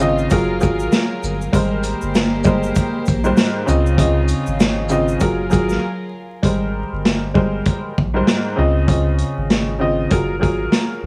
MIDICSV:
0, 0, Header, 1, 5, 480
1, 0, Start_track
1, 0, Key_signature, -4, "major"
1, 0, Tempo, 612245
1, 1203, Time_signature, 4, 2, 24, 8
1, 8673, End_track
2, 0, Start_track
2, 0, Title_t, "String section"
2, 0, Program_c, 0, 48
2, 0, Note_on_c, 0, 49, 81
2, 0, Note_on_c, 0, 60, 69
2, 0, Note_on_c, 0, 63, 77
2, 0, Note_on_c, 0, 65, 87
2, 229, Note_off_c, 0, 49, 0
2, 229, Note_off_c, 0, 60, 0
2, 229, Note_off_c, 0, 63, 0
2, 246, Note_on_c, 0, 68, 64
2, 247, Note_on_c, 0, 54, 83
2, 247, Note_on_c, 0, 70, 88
2, 1179, Note_off_c, 0, 65, 0
2, 1193, Note_off_c, 0, 70, 0
2, 1195, Note_off_c, 0, 68, 0
2, 1196, Note_off_c, 0, 54, 0
2, 1202, Note_on_c, 0, 58, 76
2, 1202, Note_on_c, 0, 67, 77
2, 1202, Note_on_c, 0, 72, 80
2, 1203, Note_on_c, 0, 70, 72
2, 2866, Note_off_c, 0, 58, 0
2, 2866, Note_off_c, 0, 67, 0
2, 2866, Note_off_c, 0, 70, 0
2, 2866, Note_off_c, 0, 72, 0
2, 2881, Note_on_c, 0, 60, 70
2, 2881, Note_on_c, 0, 63, 68
2, 2881, Note_on_c, 0, 65, 81
2, 2882, Note_on_c, 0, 49, 89
2, 4070, Note_off_c, 0, 49, 0
2, 4070, Note_off_c, 0, 60, 0
2, 4070, Note_off_c, 0, 63, 0
2, 4070, Note_off_c, 0, 65, 0
2, 4080, Note_on_c, 0, 70, 91
2, 4081, Note_on_c, 0, 54, 73
2, 4081, Note_on_c, 0, 65, 72
2, 4081, Note_on_c, 0, 68, 72
2, 5032, Note_off_c, 0, 54, 0
2, 5032, Note_off_c, 0, 65, 0
2, 5032, Note_off_c, 0, 68, 0
2, 5032, Note_off_c, 0, 70, 0
2, 8673, End_track
3, 0, Start_track
3, 0, Title_t, "Upright piano"
3, 0, Program_c, 1, 0
3, 0, Note_on_c, 1, 49, 87
3, 0, Note_on_c, 1, 60, 92
3, 5, Note_on_c, 1, 65, 85
3, 12, Note_on_c, 1, 75, 110
3, 229, Note_off_c, 1, 65, 0
3, 235, Note_on_c, 1, 54, 94
3, 238, Note_off_c, 1, 49, 0
3, 241, Note_off_c, 1, 60, 0
3, 241, Note_on_c, 1, 65, 86
3, 248, Note_off_c, 1, 75, 0
3, 248, Note_on_c, 1, 68, 91
3, 255, Note_on_c, 1, 70, 102
3, 412, Note_off_c, 1, 54, 0
3, 415, Note_off_c, 1, 65, 0
3, 419, Note_off_c, 1, 68, 0
3, 422, Note_off_c, 1, 70, 0
3, 466, Note_on_c, 1, 54, 94
3, 473, Note_on_c, 1, 65, 89
3, 479, Note_on_c, 1, 68, 94
3, 486, Note_on_c, 1, 70, 99
3, 1041, Note_off_c, 1, 54, 0
3, 1044, Note_off_c, 1, 65, 0
3, 1047, Note_off_c, 1, 68, 0
3, 1051, Note_off_c, 1, 70, 0
3, 1195, Note_on_c, 1, 56, 95
3, 1202, Note_on_c, 1, 55, 85
3, 1208, Note_on_c, 1, 70, 91
3, 1215, Note_on_c, 1, 72, 97
3, 1873, Note_off_c, 1, 56, 0
3, 1876, Note_off_c, 1, 55, 0
3, 1879, Note_off_c, 1, 70, 0
3, 1883, Note_off_c, 1, 72, 0
3, 1915, Note_on_c, 1, 56, 99
3, 1922, Note_on_c, 1, 55, 84
3, 1928, Note_on_c, 1, 70, 87
3, 1935, Note_on_c, 1, 72, 103
3, 2368, Note_off_c, 1, 56, 0
3, 2372, Note_off_c, 1, 55, 0
3, 2375, Note_off_c, 1, 70, 0
3, 2378, Note_off_c, 1, 72, 0
3, 2538, Note_on_c, 1, 44, 105
3, 2545, Note_on_c, 1, 55, 89
3, 2552, Note_on_c, 1, 70, 87
3, 2558, Note_on_c, 1, 72, 108
3, 2856, Note_off_c, 1, 44, 0
3, 2859, Note_off_c, 1, 55, 0
3, 2862, Note_off_c, 1, 70, 0
3, 2866, Note_off_c, 1, 72, 0
3, 2870, Note_on_c, 1, 49, 97
3, 2877, Note_on_c, 1, 60, 98
3, 2884, Note_on_c, 1, 65, 91
3, 2890, Note_on_c, 1, 75, 104
3, 3102, Note_off_c, 1, 49, 0
3, 3105, Note_off_c, 1, 60, 0
3, 3108, Note_off_c, 1, 65, 0
3, 3111, Note_off_c, 1, 75, 0
3, 3113, Note_on_c, 1, 49, 90
3, 3120, Note_on_c, 1, 60, 80
3, 3127, Note_on_c, 1, 65, 88
3, 3133, Note_on_c, 1, 75, 98
3, 3792, Note_off_c, 1, 49, 0
3, 3796, Note_off_c, 1, 60, 0
3, 3799, Note_off_c, 1, 65, 0
3, 3802, Note_off_c, 1, 75, 0
3, 3833, Note_on_c, 1, 49, 87
3, 3839, Note_on_c, 1, 60, 93
3, 3846, Note_on_c, 1, 65, 90
3, 3853, Note_on_c, 1, 75, 106
3, 4071, Note_off_c, 1, 65, 0
3, 4076, Note_on_c, 1, 54, 98
3, 4078, Note_off_c, 1, 49, 0
3, 4081, Note_off_c, 1, 60, 0
3, 4083, Note_on_c, 1, 65, 87
3, 4088, Note_off_c, 1, 75, 0
3, 4089, Note_on_c, 1, 68, 87
3, 4096, Note_on_c, 1, 70, 99
3, 4253, Note_off_c, 1, 54, 0
3, 4256, Note_off_c, 1, 65, 0
3, 4260, Note_off_c, 1, 68, 0
3, 4263, Note_off_c, 1, 70, 0
3, 4309, Note_on_c, 1, 54, 94
3, 4315, Note_on_c, 1, 65, 90
3, 4322, Note_on_c, 1, 68, 93
3, 4328, Note_on_c, 1, 70, 101
3, 4556, Note_off_c, 1, 54, 0
3, 4559, Note_off_c, 1, 65, 0
3, 4562, Note_off_c, 1, 68, 0
3, 4566, Note_off_c, 1, 70, 0
3, 5037, Note_on_c, 1, 56, 89
3, 5044, Note_on_c, 1, 55, 81
3, 5050, Note_on_c, 1, 70, 82
3, 5057, Note_on_c, 1, 72, 92
3, 5714, Note_off_c, 1, 56, 0
3, 5717, Note_off_c, 1, 55, 0
3, 5720, Note_off_c, 1, 70, 0
3, 5724, Note_off_c, 1, 72, 0
3, 5757, Note_on_c, 1, 56, 95
3, 5763, Note_on_c, 1, 55, 80
3, 5769, Note_on_c, 1, 70, 81
3, 5777, Note_on_c, 1, 72, 96
3, 6209, Note_off_c, 1, 56, 0
3, 6213, Note_off_c, 1, 55, 0
3, 6216, Note_off_c, 1, 70, 0
3, 6219, Note_off_c, 1, 72, 0
3, 6380, Note_on_c, 1, 44, 101
3, 6387, Note_on_c, 1, 55, 85
3, 6394, Note_on_c, 1, 70, 86
3, 6400, Note_on_c, 1, 72, 100
3, 6697, Note_off_c, 1, 44, 0
3, 6700, Note_off_c, 1, 55, 0
3, 6704, Note_off_c, 1, 70, 0
3, 6707, Note_off_c, 1, 72, 0
3, 6711, Note_on_c, 1, 49, 98
3, 6718, Note_on_c, 1, 60, 91
3, 6724, Note_on_c, 1, 65, 85
3, 6731, Note_on_c, 1, 75, 102
3, 6942, Note_off_c, 1, 49, 0
3, 6945, Note_off_c, 1, 60, 0
3, 6948, Note_off_c, 1, 65, 0
3, 6952, Note_off_c, 1, 75, 0
3, 6955, Note_on_c, 1, 49, 87
3, 6961, Note_on_c, 1, 60, 77
3, 6968, Note_on_c, 1, 65, 88
3, 6974, Note_on_c, 1, 75, 92
3, 7633, Note_off_c, 1, 49, 0
3, 7636, Note_off_c, 1, 60, 0
3, 7639, Note_off_c, 1, 65, 0
3, 7642, Note_off_c, 1, 75, 0
3, 7673, Note_on_c, 1, 49, 80
3, 7680, Note_on_c, 1, 60, 90
3, 7686, Note_on_c, 1, 65, 85
3, 7693, Note_on_c, 1, 75, 106
3, 7910, Note_off_c, 1, 65, 0
3, 7915, Note_on_c, 1, 54, 93
3, 7918, Note_off_c, 1, 49, 0
3, 7921, Note_on_c, 1, 65, 85
3, 7922, Note_off_c, 1, 60, 0
3, 7928, Note_off_c, 1, 75, 0
3, 7928, Note_on_c, 1, 68, 86
3, 7935, Note_on_c, 1, 70, 100
3, 8092, Note_off_c, 1, 54, 0
3, 8096, Note_off_c, 1, 65, 0
3, 8099, Note_off_c, 1, 68, 0
3, 8102, Note_off_c, 1, 70, 0
3, 8147, Note_on_c, 1, 54, 88
3, 8154, Note_on_c, 1, 65, 85
3, 8160, Note_on_c, 1, 68, 91
3, 8167, Note_on_c, 1, 70, 100
3, 8673, Note_off_c, 1, 54, 0
3, 8673, Note_off_c, 1, 65, 0
3, 8673, Note_off_c, 1, 68, 0
3, 8673, Note_off_c, 1, 70, 0
3, 8673, End_track
4, 0, Start_track
4, 0, Title_t, "Sub bass"
4, 0, Program_c, 2, 38
4, 0, Note_on_c, 2, 32, 92
4, 216, Note_off_c, 2, 32, 0
4, 248, Note_on_c, 2, 30, 104
4, 497, Note_on_c, 2, 32, 93
4, 508, Note_off_c, 2, 30, 0
4, 689, Note_off_c, 2, 32, 0
4, 965, Note_on_c, 2, 31, 88
4, 1162, Note_off_c, 2, 31, 0
4, 1203, Note_on_c, 2, 32, 111
4, 1519, Note_off_c, 2, 32, 0
4, 1588, Note_on_c, 2, 31, 96
4, 2135, Note_off_c, 2, 31, 0
4, 2416, Note_on_c, 2, 34, 97
4, 2608, Note_off_c, 2, 34, 0
4, 2885, Note_on_c, 2, 37, 102
4, 3398, Note_off_c, 2, 37, 0
4, 3508, Note_on_c, 2, 32, 93
4, 4055, Note_off_c, 2, 32, 0
4, 4089, Note_on_c, 2, 30, 106
4, 4337, Note_on_c, 2, 32, 91
4, 4349, Note_off_c, 2, 30, 0
4, 4529, Note_off_c, 2, 32, 0
4, 5043, Note_on_c, 2, 32, 104
4, 5359, Note_off_c, 2, 32, 0
4, 5429, Note_on_c, 2, 31, 91
4, 5976, Note_off_c, 2, 31, 0
4, 6257, Note_on_c, 2, 34, 93
4, 6449, Note_off_c, 2, 34, 0
4, 6726, Note_on_c, 2, 37, 101
4, 7239, Note_off_c, 2, 37, 0
4, 7351, Note_on_c, 2, 32, 89
4, 7896, Note_off_c, 2, 32, 0
4, 7930, Note_on_c, 2, 30, 102
4, 8178, Note_on_c, 2, 32, 90
4, 8189, Note_off_c, 2, 30, 0
4, 8369, Note_off_c, 2, 32, 0
4, 8647, Note_on_c, 2, 31, 88
4, 8673, Note_off_c, 2, 31, 0
4, 8673, End_track
5, 0, Start_track
5, 0, Title_t, "Drums"
5, 7, Note_on_c, 9, 82, 53
5, 85, Note_off_c, 9, 82, 0
5, 143, Note_on_c, 9, 82, 50
5, 221, Note_off_c, 9, 82, 0
5, 237, Note_on_c, 9, 82, 79
5, 240, Note_on_c, 9, 42, 78
5, 247, Note_on_c, 9, 36, 92
5, 316, Note_off_c, 9, 82, 0
5, 319, Note_off_c, 9, 42, 0
5, 325, Note_off_c, 9, 36, 0
5, 475, Note_on_c, 9, 82, 54
5, 495, Note_off_c, 9, 82, 0
5, 495, Note_on_c, 9, 36, 93
5, 495, Note_on_c, 9, 82, 60
5, 573, Note_off_c, 9, 82, 0
5, 574, Note_off_c, 9, 36, 0
5, 622, Note_on_c, 9, 82, 56
5, 701, Note_off_c, 9, 82, 0
5, 721, Note_on_c, 9, 82, 75
5, 724, Note_on_c, 9, 38, 114
5, 731, Note_on_c, 9, 42, 79
5, 800, Note_off_c, 9, 82, 0
5, 802, Note_off_c, 9, 38, 0
5, 809, Note_off_c, 9, 42, 0
5, 961, Note_on_c, 9, 82, 48
5, 970, Note_off_c, 9, 82, 0
5, 970, Note_on_c, 9, 82, 58
5, 1048, Note_off_c, 9, 82, 0
5, 1108, Note_on_c, 9, 82, 53
5, 1187, Note_off_c, 9, 82, 0
5, 1201, Note_on_c, 9, 36, 112
5, 1206, Note_on_c, 9, 82, 72
5, 1207, Note_on_c, 9, 42, 101
5, 1280, Note_off_c, 9, 36, 0
5, 1284, Note_off_c, 9, 82, 0
5, 1285, Note_off_c, 9, 42, 0
5, 1438, Note_on_c, 9, 42, 54
5, 1438, Note_on_c, 9, 82, 54
5, 1440, Note_off_c, 9, 82, 0
5, 1440, Note_on_c, 9, 82, 46
5, 1517, Note_off_c, 9, 42, 0
5, 1518, Note_off_c, 9, 82, 0
5, 1580, Note_on_c, 9, 82, 51
5, 1658, Note_off_c, 9, 82, 0
5, 1685, Note_on_c, 9, 82, 72
5, 1687, Note_on_c, 9, 42, 85
5, 1688, Note_on_c, 9, 38, 108
5, 1763, Note_off_c, 9, 82, 0
5, 1765, Note_off_c, 9, 42, 0
5, 1766, Note_off_c, 9, 38, 0
5, 1913, Note_on_c, 9, 82, 59
5, 1923, Note_on_c, 9, 36, 94
5, 1929, Note_off_c, 9, 82, 0
5, 1929, Note_on_c, 9, 82, 53
5, 2001, Note_off_c, 9, 36, 0
5, 2007, Note_off_c, 9, 82, 0
5, 2064, Note_on_c, 9, 82, 50
5, 2142, Note_off_c, 9, 82, 0
5, 2158, Note_on_c, 9, 82, 81
5, 2159, Note_on_c, 9, 42, 80
5, 2166, Note_on_c, 9, 36, 95
5, 2236, Note_off_c, 9, 82, 0
5, 2238, Note_off_c, 9, 42, 0
5, 2245, Note_off_c, 9, 36, 0
5, 2396, Note_on_c, 9, 82, 52
5, 2415, Note_off_c, 9, 82, 0
5, 2415, Note_on_c, 9, 36, 98
5, 2415, Note_on_c, 9, 42, 59
5, 2415, Note_on_c, 9, 82, 59
5, 2493, Note_off_c, 9, 36, 0
5, 2493, Note_off_c, 9, 42, 0
5, 2493, Note_off_c, 9, 82, 0
5, 2542, Note_on_c, 9, 82, 54
5, 2620, Note_off_c, 9, 82, 0
5, 2643, Note_on_c, 9, 38, 116
5, 2643, Note_on_c, 9, 82, 73
5, 2650, Note_on_c, 9, 42, 81
5, 2721, Note_off_c, 9, 82, 0
5, 2722, Note_off_c, 9, 38, 0
5, 2729, Note_off_c, 9, 42, 0
5, 2882, Note_on_c, 9, 82, 49
5, 2890, Note_off_c, 9, 82, 0
5, 2890, Note_on_c, 9, 82, 56
5, 2968, Note_off_c, 9, 82, 0
5, 3029, Note_on_c, 9, 82, 52
5, 3107, Note_off_c, 9, 82, 0
5, 3121, Note_on_c, 9, 36, 113
5, 3125, Note_on_c, 9, 82, 71
5, 3126, Note_on_c, 9, 42, 107
5, 3200, Note_off_c, 9, 36, 0
5, 3204, Note_off_c, 9, 82, 0
5, 3205, Note_off_c, 9, 42, 0
5, 3358, Note_on_c, 9, 42, 55
5, 3358, Note_on_c, 9, 82, 56
5, 3361, Note_off_c, 9, 82, 0
5, 3361, Note_on_c, 9, 82, 46
5, 3437, Note_off_c, 9, 42, 0
5, 3439, Note_off_c, 9, 82, 0
5, 3500, Note_on_c, 9, 82, 53
5, 3579, Note_off_c, 9, 82, 0
5, 3606, Note_on_c, 9, 82, 75
5, 3607, Note_on_c, 9, 42, 85
5, 3608, Note_on_c, 9, 38, 107
5, 3684, Note_off_c, 9, 82, 0
5, 3686, Note_off_c, 9, 42, 0
5, 3687, Note_off_c, 9, 38, 0
5, 3833, Note_on_c, 9, 82, 58
5, 3849, Note_off_c, 9, 82, 0
5, 3849, Note_on_c, 9, 82, 55
5, 3927, Note_off_c, 9, 82, 0
5, 3985, Note_on_c, 9, 82, 50
5, 4063, Note_off_c, 9, 82, 0
5, 4078, Note_on_c, 9, 82, 77
5, 4080, Note_on_c, 9, 42, 80
5, 4087, Note_on_c, 9, 36, 90
5, 4157, Note_off_c, 9, 82, 0
5, 4159, Note_off_c, 9, 42, 0
5, 4166, Note_off_c, 9, 36, 0
5, 4317, Note_on_c, 9, 82, 53
5, 4335, Note_off_c, 9, 82, 0
5, 4335, Note_on_c, 9, 42, 59
5, 4335, Note_on_c, 9, 82, 58
5, 4336, Note_on_c, 9, 36, 93
5, 4413, Note_off_c, 9, 42, 0
5, 4413, Note_off_c, 9, 82, 0
5, 4414, Note_off_c, 9, 36, 0
5, 4463, Note_on_c, 9, 82, 56
5, 4476, Note_on_c, 9, 38, 35
5, 4542, Note_off_c, 9, 82, 0
5, 4554, Note_off_c, 9, 38, 0
5, 5042, Note_on_c, 9, 36, 106
5, 5047, Note_on_c, 9, 42, 102
5, 5121, Note_off_c, 9, 36, 0
5, 5126, Note_off_c, 9, 42, 0
5, 5528, Note_on_c, 9, 42, 82
5, 5529, Note_on_c, 9, 38, 102
5, 5606, Note_off_c, 9, 42, 0
5, 5607, Note_off_c, 9, 38, 0
5, 5765, Note_on_c, 9, 36, 89
5, 5843, Note_off_c, 9, 36, 0
5, 6001, Note_on_c, 9, 42, 75
5, 6008, Note_on_c, 9, 36, 93
5, 6079, Note_off_c, 9, 42, 0
5, 6086, Note_off_c, 9, 36, 0
5, 6256, Note_on_c, 9, 36, 92
5, 6335, Note_off_c, 9, 36, 0
5, 6484, Note_on_c, 9, 38, 115
5, 6491, Note_on_c, 9, 42, 81
5, 6563, Note_off_c, 9, 38, 0
5, 6570, Note_off_c, 9, 42, 0
5, 6963, Note_on_c, 9, 36, 113
5, 6968, Note_on_c, 9, 42, 104
5, 7041, Note_off_c, 9, 36, 0
5, 7047, Note_off_c, 9, 42, 0
5, 7200, Note_on_c, 9, 42, 53
5, 7278, Note_off_c, 9, 42, 0
5, 7448, Note_on_c, 9, 42, 80
5, 7449, Note_on_c, 9, 38, 104
5, 7527, Note_off_c, 9, 42, 0
5, 7528, Note_off_c, 9, 38, 0
5, 7922, Note_on_c, 9, 42, 74
5, 7928, Note_on_c, 9, 36, 88
5, 8000, Note_off_c, 9, 42, 0
5, 8007, Note_off_c, 9, 36, 0
5, 8176, Note_on_c, 9, 42, 59
5, 8177, Note_on_c, 9, 36, 92
5, 8254, Note_off_c, 9, 42, 0
5, 8255, Note_off_c, 9, 36, 0
5, 8404, Note_on_c, 9, 38, 114
5, 8411, Note_on_c, 9, 42, 76
5, 8483, Note_off_c, 9, 38, 0
5, 8490, Note_off_c, 9, 42, 0
5, 8673, End_track
0, 0, End_of_file